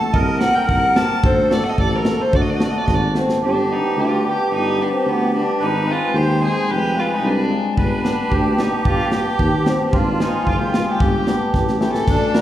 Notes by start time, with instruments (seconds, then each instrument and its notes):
Already playing: accordion A4, violin A5
0.13 tuba C2, accordion A#4, violin D#5, kick
0.40 hammered dulcimer C4 D#4 G4, violin F#5, snare
0.55 violin G5
0.69 tuba C2, violin F#5, kick
0.95 hammered dulcimer C4 D#4 G4, violin A5, snare
1.23 tuba D2, accordion A4, violin C5, kick
1.50 hammered dulcimer A3 D4 F#4, violin D5, snare
1.64 violin F#5, snare
1.69 violin D#5
1.78 tuba A1, violin D5, kick
1.96 violin A#4
2.04 hammered dulcimer A3 D4 F#4, snare
2.21 violin C5
2.33 tuba D2, accordion F#4, violin D5, kick
2.41 violin D#5
2.50 violin D5
2.56 hammered dulcimer A3 D4, violin D#5, snare
2.61 hammered dulcimer F#4, violin D5
2.71 violin D#5
2.78 violin D5
2.85 tuba G#1, violin D#5, kick, snare
2.94 violin D5
3.14 hammered dulcimer A3 D4 F#4, violin C4, snare
3.29 snare
3.42 tuba G1, violin D4, accordion G4
3.69 hammered dulcimer G3 B3 D4, violin D#4
3.97 tuba D2, violin F4
4.23 hammered dulcimer G3 B3 D4
4.28 violin G4
4.52 tuba G1, violin D#4
4.77 hammered dulcimer G3 B3 D4
4.82 violin D4
4.94 violin C4
5.06 tuba D2, violin B3
5.32 hammered dulcimer G3 B3 D4, violin D4
5.60 tuba G#1, violin D#4, accordion B4
5.86 hammered dulcimer G#3 C4 D#4
5.91 violin F4
6.14 tuba D#2, violin G4, accordion C5
6.41 hammered dulcimer G#3 C4 D#4, violin G#4
6.68 tuba F1, violin G4, accordion B4
6.95 hammered dulcimer G#3 C4 F4
6.99 violin F4
7.07 violin F4
7.14 violin D#4
7.21 tuba C2
7.26 violin D4
7.49 hammered dulcimer G#3 C4 F4
7.77 tuba G1, violin D4, accordion B4, kick
8.03 hammered dulcimer G3 B3 D4, snare
8.29 tuba D2, accordion G4, kick
8.57 hammered dulcimer G3 B3 D4, violin D#4, snare
8.85 tuba G1, violin F4, kick
8.99 snare
9.11 hammered dulcimer G3 B3 D4, violin G4, snare
9.39 tuba D#2, kick
9.65 hammered dulcimer G3 B3 D4, violin C4, snare
9.91 tuba G#1, violin D4, accordion F4, kick
10.20 hammered dulcimer G#3 C4 D#4, violin D#4, snare
10.47 tuba F#1, violin F4, kick
10.61 violin G4
10.73 hammered dulcimer G#3 C4 D#4, violin F4, snare
10.89 violin G4
10.98 tuba G1, accordion G4, kick
11.27 hammered dulcimer G3 B3 D4, snare
11.54 tuba A1, accordion G4, kick, snare
11.68 snare
11.80 hammered dulcimer A3 C#4 E4, violin G4, snare
11.94 violin A4, snare
12.07 tuba D2, accordion D4, kick, snare, crash
12.33 hammered dulcimer A3 D4 F#4, violin A#4, snare